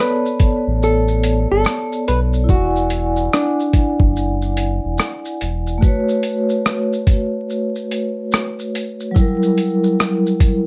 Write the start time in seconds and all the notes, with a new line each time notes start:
Already playing: B3 A4 C#5 D5 A5
0.00 B4
0.26 shaker
0.40 kick, closed hi-hat, shaker
0.67 A1
0.83 A4, shaker
1.08 shaker
1.23 closed hi-hat, shaker
1.52 G1 A4
1.64 cross-stick, shaker
1.92 shaker
2.08 B1 B4, closed hi-hat, shaker
2.33 shaker
2.44 E4 D5
2.49 E1 F#4 F#5, kick, shaker
2.54 G#5
2.76 shaker
2.90 closed hi-hat, shaker
3.16 shaker
3.33 D4, cross-stick, shaker
3.60 shaker
3.73 kick, closed hi-hat, shaker
4.00 F#1, kick
4.17 shaker
4.42 shaker
4.57 closed hi-hat, shaker
4.85 E1
4.98 cross-stick, shaker
5.25 shaker
5.41 E1, closed hi-hat, shaker
5.67 shaker
5.78 A3 F#4
5.82 B4, kick, shaker
5.88 C#5
6.09 shaker
6.23 closed hi-hat, tambourine, shaker
6.49 shaker
6.65 cross-stick, shaker
6.93 shaker
7.07 kick, closed hi-hat, tambourine, shaker
7.50 shaker
7.76 shaker
7.91 closed hi-hat, tambourine, shaker
8.32 cross-stick, shaker
8.59 shaker
8.75 closed hi-hat, tambourine, shaker
9.00 shaker
9.11 F#3 E4
9.16 G3, kick, shaker
9.21 A#4
9.43 shaker
9.58 closed hi-hat, tambourine, shaker
9.84 shaker
10.00 cross-stick, shaker
10.26 shaker
10.40 kick, closed hi-hat, tambourine, shaker